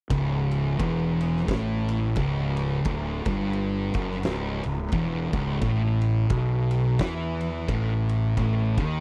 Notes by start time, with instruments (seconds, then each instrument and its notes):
0.10 fingered electric bass C#1, distorted electric guitar C#2, kick, ride
0.51 ride
0.79 fingered electric bass E1, distorted electric guitar E2, kick, ride
1.21 ride
1.36 snare
1.48 fingered electric bass A1, distorted electric guitar A2, kick, snare, ride
1.88 ride
2.15 fingered electric bass C#1, distorted electric guitar C#2, kick, ride
2.57 ride
2.85 fingered electric bass D1, distorted electric guitar D2, kick, ride
3.25 fingered electric bass G1, distorted electric guitar G2, kick, ride
3.53 ride
3.94 fingered electric bass F#1, distorted electric guitar F#2, kick, ride
4.11 snare
4.23 fingered electric bass C#1, distorted electric guitar C#2, snare, ride
4.63 fingered electric bass C#1, distorted electric guitar C#2, ride
4.92 fingered electric bass E1, distorted electric guitar E2, kick, ride
5.33 fingered electric bass C#1, distorted electric guitar C#2, kick, ride
5.61 fingered electric bass A1, distorted electric guitar A2, kick, ride
6.01 ride
6.30 fingered electric bass B1, distorted electric guitar B2, kick, ride
6.71 ride
6.99 fingered electric bass E2, distorted electric guitar E3, kick, snare, ride
7.41 ride
7.68 fingered electric bass A1, distorted electric guitar A2, kick, ride
8.09 ride
8.37 fingered electric bass A1, distorted electric guitar A2, kick, ride
8.77 fingered electric bass D#2, distorted electric guitar D#3, kick, ride